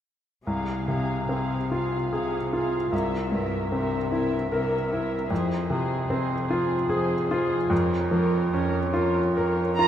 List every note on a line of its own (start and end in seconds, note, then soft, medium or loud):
0.47 2.88 C2 soft
0.47 1.20 C3 soft
0.47 0.87 G#4 soft
0.47 0.88 F5 soft
0.88 1.55 C3 soft
0.88 1.28 G#4 soft
0.88 1.27 F5 soft
1.28 2.03 C3 soft
1.28 1.96 C4 soft
1.28 1.70 G#4 soft
1.28 1.70 F5 soft
1.71 2.36 F4 soft
1.71 2.10 G#4 soft
1.71 2.10 F5 soft
2.11 2.83 C3 soft
2.11 2.51 G#4 soft
2.11 2.77 G#4 soft
2.11 2.51 F5 soft
2.53 2.93 F4 soft
2.53 2.93 G#4 soft
2.53 2.93 F5 soft
2.92 5.26 C2 soft
2.92 3.63 C3 soft
2.92 3.32 A#4 soft
2.92 3.32 E5 soft
3.32 3.96 G2 soft
3.32 3.72 A#4 soft
3.32 3.72 E5 soft
3.72 4.42 C3 soft
3.72 4.35 C4 soft
3.72 4.11 A#4 soft
3.72 4.11 E5 soft
4.12 4.75 E4 soft
4.12 4.50 A#4 soft
4.12 4.50 E5 soft
4.51 5.21 C3 soft
4.51 4.89 A#4 soft
4.51 5.15 A#4 soft
4.51 4.90 E5 soft
4.90 5.31 E4 soft
4.90 5.29 A#4 soft
4.90 5.30 E5 soft
5.29 6.00 F2 soft
5.29 7.67 F2 soft
5.29 5.68 G#4 soft
5.29 5.68 C5 soft
5.69 6.33 C3 soft
5.69 6.07 G#4 soft
5.69 6.07 C5 soft
6.08 6.80 F2 soft
6.08 6.73 C4 soft
6.08 6.47 G#4 soft
6.08 6.47 C5 soft
6.48 7.14 F4 soft
6.48 6.86 G#4 soft
6.48 6.87 C5 soft
6.88 7.61 F2 soft
6.88 7.28 G#4 soft
6.88 7.55 G#4 soft
6.88 7.28 C5 soft
7.29 7.71 F4 soft
7.29 7.70 G#4 soft
7.29 7.70 C5 soft
7.70 9.88 F2 medium
7.70 8.43 F2 medium
7.70 8.10 A#4 soft
7.70 8.11 C#5 soft
8.11 8.77 F3 soft
8.11 8.51 A#4 soft
8.11 8.51 C#5 soft
8.52 9.25 F2 soft
8.52 9.19 C#4 soft
8.52 8.91 A#4 soft
8.52 8.91 C#5 soft
8.92 9.61 F4 soft
8.92 9.34 A#4 soft
8.92 9.34 C#5 soft
9.35 9.88 F2 soft
9.35 9.76 A#4 soft
9.35 9.88 A#4 soft
9.35 9.76 C#5 soft
9.77 9.88 F4 soft
9.77 9.88 A#4 soft
9.77 9.88 C#5 soft
9.77 9.88 A#5 medium